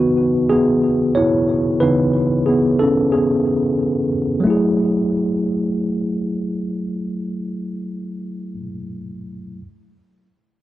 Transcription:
Already playing: C#3 E3 B3 D#4 F#4 B4
0.49 B3 G#4
1.15 E4 C#5
1.80 C#3 E3 B3 D#4 B4
2.46 B3 G#4
2.79 C#4 A4
3.12 B3 G#4
4.40 F#3 A3
4.47 E4 G#4

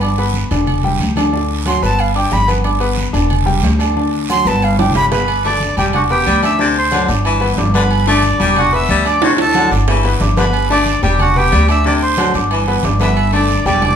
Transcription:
Already playing: G1
0.01 D4 D5 D6, high conga, low agogo, long guiro
0.17 B3 B4 B5, high conga, low agogo
0.33 high conga, short guiro
0.51 E1 D3 D4 D5, low agogo, short guiro
0.67 high conga, low conga, low agogo, long guiro
0.83 G3 G4 G5, high conga, low conga
1.00 D2, high conga, low agogo, short guiro
1.16 D3 D4 D5, high conga, low agogo, short guiro
1.33 D3 D4 D5, high conga, long guiro
1.49 high conga
1.66 F#3 F#4 F#5 C6, high conga, low agogo, short guiro
1.82 G1 B3 B4 A5 B5, short guiro
1.99 F5, high conga, low agogo, long guiro
2.15 D4 D5 G5 D6, high conga, low agogo
2.31 G1 B5, high conga, low timbale, short guiro
2.48 B3 B4 B5, high conga, low agogo, short guiro
2.64 D4 D5 D6, high conga, low agogo, long guiro
2.80 B3 B4 B5, high conga, low agogo
2.97 high conga, short guiro
3.13 E1 D3 D4 D5, low agogo, short guiro
3.30 high conga, low conga, low agogo, long guiro
3.46 G3 G4 G5, high conga, low conga
3.63 D2, high conga, low timbale, low agogo, short guiro
3.79 D3 D4 D5, low agogo, short guiro
3.96 D3 D4 D5, high conga, long guiro
4.12 high conga
4.29 F#3 F#4 F#5 C6, high conga, low agogo, short guiro
4.45 G1 B3 B4 A5 B5, short guiro
4.62 F5, high conga, low agogo, long guiro
4.79 D4 D5 G5 D6, high conga, high timbale, low agogo
4.90 low conga
4.95 G1 B5, low timbale, short guiro
5.12 B3 B4 B5, low conga, low timbale, low agogo, short guiro
5.28 high conga, low agogo, long guiro
5.44 D3 A3 D4 D5 D6, high conga, low agogo
5.60 high conga, short guiro
5.77 E1 G3 G4 G5, low agogo, short guiro
5.93 D4 F#4 D5 F#5 D6, high conga, low conga, low agogo, long guiro
6.10 B3 G4 B4 G5 B5, high conga
6.26 D2 G3, high conga, low agogo, short guiro
6.43 D4 D5 E5 D6 E6, high conga, low agogo, short guiro
6.59 C3 D3 D4 D5 D6, high conga, long guiro
6.76 C5 C6, high conga
6.91 D3 F#3 F#4 F#5, high conga, low agogo, short guiro
7.08 G1 D4 D5 D6, short guiro
7.25 E3, high conga, low agogo, long guiro
7.40 B3 B4 B5, high conga, low agogo
7.57 G1 D4 D5 D6, high conga, low timbale, short guiro
7.74 D3 B3 B4 B5, high conga, low agogo, short guiro
7.91 high conga, low agogo, long guiro
8.07 D3 A3 D4 D5 D6, high conga, low agogo
8.23 high conga, short guiro
8.39 E1 G3 G4 G5, low agogo, short guiro
8.56 D4 F#4 D5 F#5 D6, high conga, low conga, low agogo, long guiro
8.73 B3 B4 E5 B5 E6, high conga
8.89 D2 G3, high conga, low agogo, short guiro
9.05 D4 D5 D6, low agogo, short guiro
9.21 C3 D3 D4 F#4 D5 F#5, high conga, high timbale, long guiro
9.38 A4 A5, high conga, high timbale
9.55 D3 F#3 F#4 F#5, high conga, high timbale, low agogo, short guiro
9.71 G1 D4 D5 D6, short guiro
9.88 E3, high conga, low timbale, low agogo, long guiro
10.04 B3 B4 B5, high conga, low timbale, low agogo
10.20 G1 D4 D5 D6, high conga, low timbale, short guiro
10.37 D3 B3 B4 B5, high conga, low timbale, low agogo, short guiro
10.53 low agogo, long guiro
10.69 D3 A3 D4 D5 D6, high conga, low agogo
10.86 high conga, short guiro
11.03 E1 G3 G4 G5, low agogo, short guiro
11.19 D4 F#4 D5 F#5 D6, high conga, low conga, low agogo, long guiro
11.35 B3 G4 B4 G5 B5, high conga, low conga
11.52 D2 G3, high conga, low timbale, low agogo, short guiro
11.68 D4 D5 E5 D6 E6, low agogo, short guiro
11.84 C3 D3 D4 D5 D6, high conga, long guiro
12.01 C5 C6, high conga
12.17 D3 F#3 F#4 F#5, high conga, low agogo, short guiro
12.34 G1 D4 D5 D6, short guiro
12.51 E3, high conga, low agogo, long guiro
12.67 B3 B4 B5, high conga, low agogo
12.83 G1 D4 D5 D6, high conga, low timbale, short guiro
13.00 D3 B3 B4 E5 B5 E6, high conga, low agogo, short guiro
13.17 high conga, low agogo, long guiro
13.32 D3 A3 D4 D5 D6, high conga, low agogo
13.49 high conga, short guiro
13.65 E1 G3 G4 D5 G5 D6, low agogo, short guiro
13.81 D4 D5 D6, high conga, low conga, low agogo, long guiro

